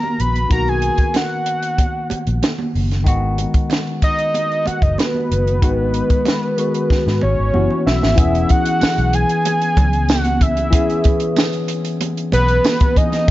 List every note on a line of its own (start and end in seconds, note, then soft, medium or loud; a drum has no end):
0.00 0.46 D#3 medium
0.00 0.46 A#3 medium
0.00 0.47 B3 medium
0.00 0.48 F#4 medium
0.00 0.22 A#5 loud
0.00 high conga medium
0.20 0.45 A#1 medium
0.20 0.51 B5 loud
0.20 closed hi-hat medium
0.36 closed hi-hat soft
0.49 0.89 B1 medium
0.49 3.01 D#3 medium
0.49 3.02 A#3 medium
0.49 3.03 B3 medium
0.49 0.70 A#5 loud
0.49 kick loud
0.49 closed hi-hat medium
0.53 3.04 F#4 medium
0.68 1.18 G#5 loud
0.68 closed hi-hat soft
0.82 closed hi-hat medium
0.98 kick medium
0.98 closed hi-hat soft
1.14 2.75 F#5 loud
1.14 snare medium
1.14 closed hi-hat medium
1.14 high conga medium
1.46 closed hi-hat medium
1.62 closed hi-hat medium
1.78 kick medium
1.78 closed hi-hat medium
1.78 muted conga soft
2.10 muted fingered electric bass stroke soft
2.10 closed hi-hat medium
2.10 muted conga soft
2.27 2.40 A#1 medium
2.27 closed hi-hat soft
2.43 snare loud
2.43 closed hi-hat medium
2.43 high conga medium
2.59 high conga medium
2.75 3.07 F#1 medium
2.75 open hi-hat soft
2.91 snare soft
2.91 closed hi-hat soft
3.04 3.45 G#1 medium
3.04 5.57 D#3 medium
3.04 5.58 G#3 medium
3.04 5.58 B3 medium
3.04 kick loud
3.04 closed hi-hat medium
3.08 5.59 F#4 medium
3.38 closed hi-hat medium
3.38 muted conga soft
3.54 kick medium
3.54 closed hi-hat medium
3.70 snare medium
3.70 closed hi-hat medium
3.70 high conga medium
3.87 closed hi-hat soft
4.02 4.68 D#5 medium
4.02 kick medium
4.02 closed hi-hat medium
4.19 closed hi-hat soft
4.34 closed hi-hat medium
4.34 muted conga soft
4.52 closed hi-hat soft
4.66 4.84 F#5 loud
4.66 muted fingered electric bass stroke soft
4.66 closed hi-hat medium
4.66 muted conga medium
4.82 4.95 F#1 medium
4.82 5.00 D#5 medium
4.82 kick medium
4.82 closed hi-hat soft
4.98 7.22 B4 medium
4.98 snare loud
4.98 closed hi-hat medium
4.98 high conga medium
5.14 high conga medium
5.31 5.63 F#1 medium
5.31 closed hi-hat medium
5.47 closed hi-hat soft
5.62 6.00 G#1 medium
5.62 6.56 D#3 medium
5.62 6.56 G#3 medium
5.62 6.57 B3 medium
5.62 6.58 F#4 medium
5.62 kick loud
5.62 closed hi-hat loud
5.94 closed hi-hat medium
6.10 kick medium
6.10 closed hi-hat medium
6.25 snare medium
6.25 closed hi-hat medium
6.25 high conga medium
6.57 7.53 D#3 medium
6.57 7.54 G#3 soft
6.57 7.53 B3 soft
6.57 7.54 F#4 medium
6.57 closed hi-hat medium
6.74 closed hi-hat medium
6.90 kick medium
6.90 snare soft
6.90 muted conga soft
7.07 7.19 G#2 medium
7.07 snare soft
7.21 7.35 G#1 medium
7.21 7.82 C#5 medium
7.21 muted conga medium
7.39 7.51 G#1 medium
7.53 7.67 F#1 medium
7.53 8.14 E3 medium
7.53 8.16 B3 medium
7.53 8.17 C#4 medium
7.53 8.18 F#4 medium
7.53 high conga medium
7.70 high conga medium
7.86 7.99 B1 medium
7.86 8.52 E5 loud
7.86 snare medium
8.02 8.15 G#1 medium
8.02 snare medium
8.02 high conga soft
8.15 8.43 E1 loud
8.15 10.68 E3 medium
8.15 10.69 B3 medium
8.15 10.69 C#4 medium
8.15 kick loud
8.15 closed hi-hat loud
8.20 10.70 G#4 medium
8.35 closed hi-hat soft
8.49 9.16 F#5 loud
8.49 kick medium
8.49 closed hi-hat medium
8.66 closed hi-hat medium
8.81 muted fingered electric bass stroke medium
8.81 snare loud
8.81 tambourine medium
8.81 high conga medium
8.98 9.23 B1 medium
8.98 closed hi-hat soft
9.13 10.11 G#5 loud
9.13 closed hi-hat medium
9.29 closed hi-hat medium
9.45 closed hi-hat loud
9.45 muted conga soft
9.62 closed hi-hat soft
9.77 10.73 C#2 medium
9.77 kick medium
9.77 closed hi-hat medium
9.77 muted conga medium
9.77 low conga medium
9.93 closed hi-hat soft
10.09 10.44 F#5 loud
10.09 snare loud
10.09 tambourine medium
10.09 high conga medium
10.24 closed hi-hat medium
10.24 high conga medium
10.41 11.37 E5 loud
10.41 kick medium
10.41 closed hi-hat medium
10.57 closed hi-hat soft
10.57 high conga soft
10.70 10.98 E1 loud
10.70 12.91 E3 medium
10.70 12.92 B3 medium
10.70 12.92 C#4 medium
10.70 kick loud
10.70 closed hi-hat loud
10.75 12.93 G#4 medium
10.90 closed hi-hat soft
11.04 kick medium
11.04 closed hi-hat medium
11.04 muted conga soft
11.20 closed hi-hat medium
11.36 snare loud
11.36 tambourine loud
11.36 high conga medium
11.53 closed hi-hat soft
11.68 closed hi-hat medium
11.85 closed hi-hat medium
12.01 closed hi-hat medium
12.01 muted conga soft
12.17 closed hi-hat soft
12.32 12.58 B1 medium
12.32 12.98 B4 medium
12.32 closed hi-hat medium
12.32 muted conga medium
12.48 closed hi-hat soft
12.64 snare loud
12.64 tambourine medium
12.64 high conga medium
12.80 kick loud
12.80 closed hi-hat medium
12.80 high conga medium
12.95 13.28 E3 medium
12.95 13.28 B3 soft
12.95 13.28 C#4 soft
12.95 13.29 G#4 medium
12.95 13.31 D#5 loud
12.95 kick medium
12.95 closed hi-hat medium
13.12 snare soft
13.12 closed hi-hat soft
13.12 high conga soft
13.26 13.31 D#3 medium
13.26 13.31 A#3 medium